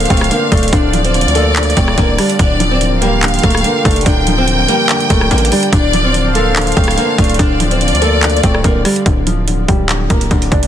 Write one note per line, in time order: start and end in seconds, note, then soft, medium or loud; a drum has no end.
0.00 0.31 D3 medium
0.00 0.31 F3 medium
0.00 2.36 D4 medium
0.00 0.73 A4 loud
0.00 2.36 C5 medium
0.00 0.69 F5 medium
0.00 2.36 F5 medium
0.00 closed hi-hat medium
0.05 1.14 C4 medium
0.05 closed hi-hat medium
0.10 0.30 D1 loud
0.10 0.27 A3 medium
0.10 kick loud
0.10 closed hi-hat medium
0.17 closed hi-hat medium
0.21 cross-stick loud
0.21 closed hi-hat medium
0.31 0.71 D3 medium
0.31 0.48 A#3 medium
0.31 closed hi-hat medium
0.52 0.72 D1 loud
0.52 0.69 A3 medium
0.52 1.56 D4 medium
0.52 kick loud
0.52 closed hi-hat medium
0.57 closed hi-hat medium
0.63 closed hi-hat medium
0.68 closed hi-hat medium
0.72 1.27 D1 loud
0.72 1.13 D3 medium
0.72 1.03 D4 medium
0.72 2.35 D5 loud
0.72 kick loud
0.72 closed hi-hat medium
0.94 1.98 F3 medium
0.94 closed hi-hat medium
1.05 1.33 C4 medium
1.05 closed hi-hat soft
1.14 1.55 D3 medium
1.14 closed hi-hat medium
1.21 closed hi-hat medium
1.25 1.74 D2 loud
1.25 closed hi-hat medium
1.35 1.74 A#3 medium
1.35 2.39 A4 loud
1.35 closed hi-hat medium
1.56 1.96 D3 medium
1.56 clap loud
1.56 closed hi-hat medium
1.63 closed hi-hat medium
1.70 closed hi-hat medium
1.77 1.97 D1 loud
1.77 1.94 A3 medium
1.77 2.39 C4 medium
1.77 kick medium
1.77 closed hi-hat medium
1.88 cross-stick loud
1.98 2.18 D1 loud
1.98 2.38 D3 medium
1.98 2.15 A#3 medium
1.98 kick loud
1.98 closed hi-hat medium
2.18 2.36 G3 medium
2.18 2.39 D4 medium
2.18 cross-stick medium
2.18 closed hi-hat medium
2.18 open hi-hat medium
2.30 closed hi-hat medium
2.39 3.39 D1 loud
2.39 2.79 D3 medium
2.39 2.69 D4 loud
2.39 5.69 F4 medium
2.39 5.69 A#4 medium
2.39 2.98 D5 loud
2.39 5.69 G5 medium
2.39 kick loud
2.39 closed hi-hat medium
2.60 3.64 F3 medium
2.60 closed hi-hat medium
2.71 3.00 C4 medium
2.81 3.21 D3 medium
2.81 closed hi-hat medium
3.01 4.06 G3 loud
3.01 3.41 A#3 medium
3.01 4.02 F5 loud
3.01 closed hi-hat medium
3.22 3.63 D3 medium
3.22 clap loud
3.22 closed hi-hat medium
3.28 closed hi-hat medium
3.34 closed hi-hat medium
3.39 closed hi-hat medium
3.43 3.63 D1 loud
3.43 3.61 A3 medium
3.43 4.48 A#3 medium
3.43 kick medium
3.43 closed hi-hat medium
3.50 closed hi-hat medium
3.55 cross-stick loud
3.55 closed hi-hat medium
3.64 4.05 D3 medium
3.64 3.81 A#3 medium
3.64 closed hi-hat medium
3.84 4.05 F1 loud
3.84 4.02 A3 medium
3.84 4.89 D4 medium
3.84 kick loud
3.84 closed hi-hat medium
3.91 closed hi-hat medium
3.96 closed hi-hat medium
4.01 closed hi-hat medium
4.06 4.66 D1 loud
4.06 4.46 D3 medium
4.06 4.36 D4 loud
4.06 5.69 G5 loud
4.06 kick loud
4.06 closed hi-hat medium
4.27 5.31 F3 medium
4.27 closed hi-hat medium
4.38 4.67 C4 medium
4.47 4.88 D3 medium
4.47 closed hi-hat medium
4.68 5.73 G3 loud
4.68 5.08 A#3 medium
4.68 closed hi-hat medium
4.89 5.29 D3 medium
4.89 clap loud
4.89 closed hi-hat medium
5.00 closed hi-hat medium
5.10 5.30 D1 loud
5.10 5.27 A3 medium
5.10 5.73 A#3 medium
5.10 kick medium
5.10 closed hi-hat medium
5.21 cross-stick loud
5.31 5.51 A1 loud
5.31 5.71 D3 medium
5.31 5.48 A#3 medium
5.31 closed hi-hat soft
5.38 closed hi-hat medium
5.45 closed hi-hat medium
5.52 5.69 G3 medium
5.52 5.73 D4 medium
5.52 closed hi-hat soft
5.52 open hi-hat medium
5.63 closed hi-hat medium
5.73 6.73 D1 loud
5.73 6.12 D3 medium
5.73 9.03 D4 medium
5.73 6.03 D4 loud
5.73 9.03 C5 medium
5.73 6.31 D5 loud
5.73 9.03 F5 medium
5.73 kick loud
5.73 closed hi-hat medium
5.93 6.98 F3 medium
5.93 closed hi-hat medium
6.05 6.33 C4 medium
6.14 6.55 D3 medium
6.14 closed hi-hat medium
6.35 6.74 A#3 medium
6.35 7.40 A4 loud
6.35 7.35 F5 medium
6.35 closed hi-hat medium
6.56 6.96 D3 medium
6.56 clap loud
6.56 closed hi-hat medium
6.62 closed hi-hat medium
6.67 closed hi-hat medium
6.72 closed hi-hat medium
6.76 6.97 D1 loud
6.76 6.94 A3 medium
6.76 7.81 C4 medium
6.76 kick loud
6.76 closed hi-hat medium
6.84 closed hi-hat medium
6.88 cross-stick loud
6.88 closed hi-hat medium
6.97 7.38 D3 medium
6.97 7.15 A#3 medium
6.97 closed hi-hat medium
7.18 7.38 D1 loud
7.18 7.35 A3 medium
7.18 8.23 D4 medium
7.18 kick loud
7.18 closed hi-hat medium
7.24 closed hi-hat medium
7.29 closed hi-hat medium
7.34 closed hi-hat medium
7.39 7.94 D1 loud
7.39 7.79 D3 medium
7.39 7.69 D4 loud
7.39 9.02 D5 loud
7.39 kick loud
7.39 closed hi-hat medium
7.60 8.64 F3 medium
7.60 closed hi-hat medium
7.71 8.00 C4 medium
7.71 closed hi-hat soft
7.81 8.21 D3 medium
7.81 closed hi-hat medium
7.88 closed hi-hat medium
7.92 8.41 D2 loud
7.92 closed hi-hat medium
8.02 8.41 A#3 medium
8.02 9.06 A4 loud
8.02 closed hi-hat medium
8.23 8.63 D3 medium
8.23 clap loud
8.23 closed hi-hat medium
8.30 closed hi-hat medium
8.37 closed hi-hat medium
8.43 8.63 D1 loud
8.43 8.61 A3 medium
8.43 9.06 C4 medium
8.43 kick medium
8.43 closed hi-hat medium
8.55 cross-stick loud
8.64 8.84 D1 loud
8.64 9.05 D3 medium
8.64 8.82 A#3 medium
8.64 kick loud
8.64 closed hi-hat medium
8.85 9.02 G3 medium
8.85 9.06 D4 medium
8.85 cross-stick medium
8.85 closed hi-hat medium
8.85 open hi-hat medium
8.96 closed hi-hat medium
9.06 9.66 D1 loud
9.06 9.46 D3 medium
9.06 kick loud
9.06 closed hi-hat medium
9.27 10.31 F3 medium
9.27 closed hi-hat medium
9.48 9.88 D3 medium
9.48 closed hi-hat medium
9.68 10.09 D1 loud
9.68 10.67 G3 medium
9.68 kick loud
9.68 closed hi-hat medium
9.89 10.30 D3 medium
9.89 clap loud
9.89 closed hi-hat medium
10.10 10.30 D1 loud
10.10 10.67 A#3 medium
10.10 kick loud
10.10 closed hi-hat medium
10.21 closed hi-hat medium
10.31 10.51 D1 loud
10.31 10.67 D3 medium
10.31 kick loud
10.31 closed hi-hat soft
10.42 closed hi-hat medium
10.51 10.67 F1 loud
10.51 10.67 D4 medium
10.51 kick loud
10.51 closed hi-hat medium
10.63 closed hi-hat medium